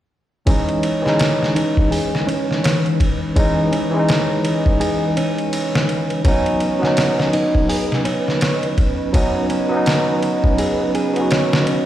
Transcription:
0.46 0.99 E3 medium
0.46 6.21 E3 medium
0.46 1.00 G#3 medium
0.46 11.86 C#4 medium
0.46 1.52 C#4 medium
0.46 1.00 C#4 medium
0.46 1.01 D#4 medium
0.46 11.86 B4 medium
0.46 11.86 D#5 medium
0.46 kick medium
0.46 ride medium
0.69 ride soft
0.83 ride medium
1.02 3.31 E3 medium
1.02 3.33 G#3 medium
1.06 3.34 C#4 medium
1.06 3.35 D#4 medium
1.06 snare soft
1.19 snare loud
1.19 ride medium
1.43 snare soft
1.56 1.89 D#4 medium
1.56 ride medium
1.77 kick medium
1.91 2.15 G#4 medium
1.91 open hi-hat medium
2.15 snare soft
2.27 2.61 C#4 medium
2.27 ride medium
2.51 snare soft
2.64 2.87 C#5 medium
2.64 snare loud
2.64 ride medium
2.86 ride soft
3.00 kick medium
3.00 ride medium
3.35 3.88 E3 medium
3.35 3.89 G#3 medium
3.35 3.69 C#4 medium
3.35 3.89 C#4 medium
3.35 kick medium
3.35 ride medium
3.39 3.90 D#4 medium
3.72 4.77 C#4 medium
3.72 ride medium
3.91 6.20 E3 medium
3.91 6.22 G#3 medium
3.97 6.23 C#4 medium
3.97 6.25 D#4 medium
4.09 snare loud
4.09 ride medium
4.45 ride medium
4.66 kick medium
4.80 5.04 G#4 medium
4.80 ride medium
5.17 6.22 C#4 medium
5.17 ride medium
5.38 ride soft
5.53 ride medium
5.75 snare loud
5.89 ride medium
6.10 ride soft
6.24 6.77 F#3 medium
6.24 6.78 B3 medium
6.24 7.31 C#4 medium
6.24 6.79 C#4 medium
6.24 11.86 B4 medium
6.24 kick medium
6.24 ride medium
6.28 6.79 D#4 medium
6.46 ride soft
6.60 ride medium
6.79 9.09 F#3 medium
6.79 9.10 B3 medium
6.79 snare soft
6.84 9.12 C#4 medium
6.84 9.13 D#4 medium
6.97 snare loud
6.97 ride medium
7.20 snare soft
7.33 7.67 D#4 medium
7.33 ride medium
7.55 kick medium
7.69 7.93 G#4 medium
7.69 open hi-hat medium
7.92 snare soft
8.05 8.39 C#4 medium
8.05 ride medium
8.28 snare soft
8.41 8.66 C#5 medium
8.41 snare loud
8.41 ride medium
8.63 ride soft
8.78 kick medium
8.78 ride medium
9.13 9.66 F#3 medium
9.13 9.67 B3 medium
9.13 9.48 C#4 medium
9.13 9.67 C#4 medium
9.13 kick medium
9.13 ride medium
9.17 9.68 D#4 medium
9.50 10.56 C#4 medium
9.50 ride medium
9.69 11.11 F#3 medium
9.69 11.12 B3 medium
9.74 11.13 C#4 medium
9.74 11.15 D#4 medium
9.86 snare loud
9.86 ride medium
10.23 ride medium
10.44 kick medium
10.58 10.82 G#4 medium
10.58 ride medium
10.95 11.30 G#4 medium
10.95 ride medium
11.14 11.86 F#3 medium
11.14 11.86 B3 medium
11.14 ride soft
11.19 11.86 C#4 medium
11.19 11.86 F#4 medium
11.31 11.66 C#5 medium
11.31 snare loud
11.31 ride medium
11.53 snare loud
11.67 11.86 C#4 medium
11.67 ride medium

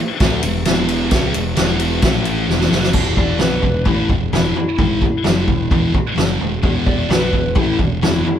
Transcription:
0.20 0.42 D2 medium
0.20 0.43 D3 medium
0.20 0.43 A3 loud
0.20 0.43 D4 medium
0.20 kick loud
0.20 snare loud
0.20 ride loud
0.43 0.65 E1 medium
0.43 0.62 E2 medium
0.43 0.62 B2 medium
0.43 ride medium
0.65 1.08 E1 loud
0.65 1.11 E2 medium
0.65 1.10 B2 loud
0.65 1.12 E3 medium
0.65 snare loud
0.65 ride loud
0.88 ride medium
1.11 1.33 C#2 loud
1.11 1.33 C#3 medium
1.11 1.34 G#3 loud
1.11 1.34 C#4 loud
1.11 kick loud
1.11 snare loud
1.11 ride loud
1.34 1.56 E1 medium
1.34 1.53 E2 medium
1.34 1.53 B2 medium
1.34 ride medium
1.56 2.00 E1 medium
1.56 2.01 E2 medium
1.56 2.01 B2 medium
1.56 2.01 E3 loud
1.56 snare loud
1.56 ride loud
1.79 ride medium
2.01 2.45 A1 loud
2.01 2.47 A2 medium
2.01 2.47 E3 medium
2.01 2.48 A3 loud
2.01 kick loud
2.01 snare loud
2.01 ride medium
2.25 ride medium
2.47 2.70 E1 loud
2.47 2.70 E2 medium
2.47 2.70 B2 medium
2.47 2.71 E3 loud
2.47 snare medium
2.61 snare medium
2.70 2.92 F#1 loud
2.70 2.92 F#2 loud
2.70 2.92 C#3 medium
2.70 2.93 F#3 medium
2.70 snare medium
2.83 snare medium
2.92 3.37 E1 medium
2.92 3.38 E2 medium
2.92 3.38 B2 medium
2.92 3.39 E3 loud
2.92 kick medium
2.92 floor tom medium
2.92 crash loud
3.17 3.40 D5 medium
3.17 kick medium
3.17 floor tom medium
3.39 3.62 B1 loud
3.39 3.62 B2 medium
3.39 3.62 F#3 medium
3.39 3.63 B3 loud
3.39 3.85 B4 medium
3.39 snare loud
3.39 floor tom medium
3.62 3.84 E1 medium
3.62 3.81 E2 medium
3.62 3.82 B2 medium
3.62 kick medium
3.62 floor tom medium
3.85 4.08 A1 medium
3.85 4.08 A2 medium
3.85 4.09 E3 medium
3.85 4.09 A3 loud
3.85 4.09 E4 medium
3.85 kick loud
3.85 floor tom medium
4.09 4.31 E1 medium
4.09 4.28 E2 medium
4.09 4.28 B2 medium
4.09 kick medium
4.09 floor tom medium
4.31 4.53 E1 medium
4.31 4.55 E2 medium
4.31 4.55 B2 loud
4.31 4.56 E3 loud
4.31 4.55 E4 medium
4.31 snare loud
4.31 floor tom medium
4.55 5.90 E4 medium
4.55 muted picked electric bass stroke soft
4.55 muted distorted electric guitar stroke medium
4.55 floor tom medium
4.78 5.00 G#1 medium
4.78 5.01 G#2 medium
4.78 5.02 D#3 loud
4.78 5.02 G#3 loud
4.78 kick loud
4.78 floor tom medium
5.02 muted picked electric bass stroke soft
5.02 muted distorted electric guitar stroke medium
5.02 kick medium
5.02 floor tom medium
5.24 5.47 F#1 medium
5.24 5.47 F#2 loud
5.24 5.47 C#3 medium
5.24 5.47 F#3 loud
5.24 snare loud
5.24 floor tom medium
5.47 5.69 E1 medium
5.47 5.67 E2 medium
5.47 5.67 B2 medium
5.47 kick medium
5.47 floor tom medium
5.70 5.92 E1 medium
5.70 5.92 E2 medium
5.70 5.93 B2 medium
5.70 5.93 E3 loud
5.70 kick loud
5.70 floor tom medium
5.94 muted distorted electric guitar stroke medium
5.94 muted picked electric bass stroke soft
5.94 kick medium
5.94 floor tom medium
6.16 6.39 F#1 loud
6.16 6.39 F#2 loud
6.16 6.39 C#3 medium
6.16 6.39 F#3 medium
6.16 snare loud
6.16 floor tom medium
6.40 6.62 E1 medium
6.40 6.59 E2 medium
6.40 6.59 B2 medium
6.40 floor tom medium
6.62 7.06 E1 medium
6.62 7.08 E2 loud
6.62 7.08 B2 loud
6.62 7.09 E3 loud
6.62 kick loud
6.62 floor tom medium
6.86 7.09 D5 medium
6.86 kick medium
6.86 floor tom medium
7.09 7.31 B1 loud
7.09 7.32 B2 medium
7.09 7.32 F#3 medium
7.09 7.32 B3 loud
7.09 snare loud
7.09 floor tom medium
7.13 7.56 B4 loud
7.32 7.54 E1 medium
7.32 7.51 E2 medium
7.32 7.51 B2 medium
7.32 kick medium
7.32 floor tom medium
7.55 7.77 A1 medium
7.55 7.78 A2 medium
7.55 7.78 E3 medium
7.55 7.78 A3 loud
7.55 7.78 E4 medium
7.55 kick loud
7.55 floor tom medium
7.78 8.00 E1 medium
7.78 7.97 E2 medium
7.78 7.97 B2 medium
7.78 kick medium
7.78 floor tom medium
8.01 8.24 E1 loud
8.01 8.24 E2 medium
8.01 8.24 B2 medium
8.01 8.25 E3 loud
8.01 8.23 E4 loud
8.01 snare loud
8.01 floor tom medium
8.25 8.39 E4 loud
8.25 muted distorted electric guitar stroke medium
8.25 muted picked electric bass stroke soft
8.25 floor tom medium

